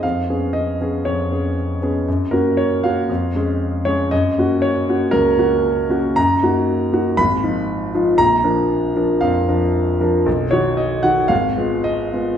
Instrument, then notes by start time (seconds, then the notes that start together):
grand piano
0.03 F2 F5
0.29 B3 C#4 G#4
0.53 D#5
0.81 B3 C#4 G#4
1.05 F2 C#5
1.32 B3 C#4 G#4
1.82 B3 C#4 G#4
2.08 F#2
2.31 A#3 C#4 F#4 A#4
2.57 C#5
2.84 A#3 C#4 F#4 F5
3.09 F2
3.35 G#3 C#4 G#4
3.85 G#3 C#4 G#4 C#5
4.11 F#2 D#5
4.38 A#3 C#4 F#4
4.62 C#5
4.89 A#3 C#4 F#4
5.11 C#2 A#4
5.39 A#3 C#4 F#4
5.89 A#3 C#4 F#4
6.16 F#2 A#5
6.43 A#3 D#4 F#4
6.93 A#3 D#4 F#4
7.17 G#1 B5
7.44 F3 D#4 F4
7.95 F3 D#4 F4
8.18 A#1 A#5
8.44 F3 D4 A#4
8.96 F3 D4 A#4
9.21 F2 F5
9.48 F3 D4 A#4
10.00 F3 D4 A#4
10.26 B1
10.51 D#3 D#4 F#4 C#5
10.77 D#5
11.03 D#3 D#4 F#4 F#5
11.28 G#1 F5
11.57 G#3 B3 F4
11.84 D#5
12.13 G#3 B3 F4